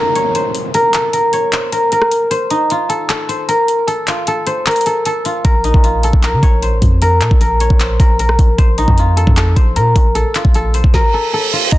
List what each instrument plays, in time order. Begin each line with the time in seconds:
Already playing: guzheng D#4 F4 A#4 C5, downlifter
0.15 guzheng C#5, closed hi-hat
0.35 guzheng C5, closed hi-hat
0.55 closed hi-hat
0.74 guzheng A#4, closed hi-hat
0.94 guzheng A4, clap, closed hi-hat
1.13 guzheng A#4, closed hi-hat
1.33 guzheng C#5, closed hi-hat
1.52 guzheng C5, clap, closed hi-hat
1.72 guzheng A#4, closed hi-hat
1.92 guzheng A#4, closed hi-hat
2.02 cross-stick
2.11 closed hi-hat
2.31 guzheng C5, closed hi-hat
2.50 guzheng D#4, closed hi-hat
2.70 guzheng F4, closed hi-hat
2.89 guzheng A4, closed hi-hat
3.09 guzheng A4, clap, closed hi-hat
3.29 guzheng C5, closed hi-hat
3.49 guzheng A#4, closed hi-hat
3.68 closed hi-hat
3.87 guzheng A4, closed hi-hat
4.07 guzheng F4, clap, closed hi-hat
4.27 guzheng A4, closed hi-hat
4.47 guzheng C5, closed hi-hat
4.66 guzheng A#4, clap, closed hi-hat
4.71 closed hi-hat
4.76 closed hi-hat
4.81 closed hi-hat
4.86 guzheng A4, closed hi-hat
5.05 guzheng A4, closed hi-hat
5.25 guzheng F4, closed hi-hat
5.45 808-style bass A#1, guzheng A#4, kick, closed hi-hat
5.64 guzheng D#4, closed hi-hat
5.74 808-style bass A#1, kick
5.84 guzheng F4, closed hi-hat
6.03 guzheng A4, closed hi-hat
6.13 808-style bass A#1, kick
6.23 guzheng A#4, clap, closed hi-hat
6.33 808-style bass C#3
6.43 808-style bass A#1, guzheng C#5, kick, closed hi-hat
6.62 guzheng C5, closed hi-hat
6.72 808-style bass A1
6.82 808-style bass F2, kick, closed hi-hat
7.02 guzheng A#4, closed hi-hat
7.21 808-style bass A#2, guzheng A4, clap, closed hi-hat
7.31 808-style bass A#1, kick
7.41 guzheng A#4, closed hi-hat
7.60 guzheng C#5, closed hi-hat
7.70 808-style bass A#1, kick
7.80 guzheng C5, clap, closed hi-hat
8.00 808-style bass A#1, guzheng A#4, kick, closed hi-hat
8.19 guzheng A#4, closed hi-hat
8.29 cross-stick
8.39 808-style bass A#1, kick, closed hi-hat
8.58 808-style bass A#1, guzheng C5, kick, closed hi-hat
8.78 guzheng D#4, closed hi-hat
8.88 808-style bass F2, kick
8.98 guzheng F4, closed hi-hat
9.17 guzheng A4, closed hi-hat
9.27 808-style bass F2, kick
9.37 guzheng A4, clap, closed hi-hat
9.56 808-style bass A#1, guzheng C5, kick, closed hi-hat
9.76 808-style bass A#2, guzheng A#4, closed hi-hat
9.96 808-style bass A#1, kick, closed hi-hat
10.15 guzheng A4, closed hi-hat
10.35 guzheng F4, clap, closed hi-hat
10.45 808-style bass A#1, kick
10.54 guzheng A4, closed hi-hat
10.74 guzheng C5, closed hi-hat
10.84 808-style bass A#1, kick
10.94 guzheng A#4, kick, snare, reverse cymbal
11.14 guzheng A4
11.33 guzheng A4
11.53 guzheng F4
11.72 808-style bass A#1, soft synth lead D#5, guzheng A#5, kick, closed hi-hat, crash, impact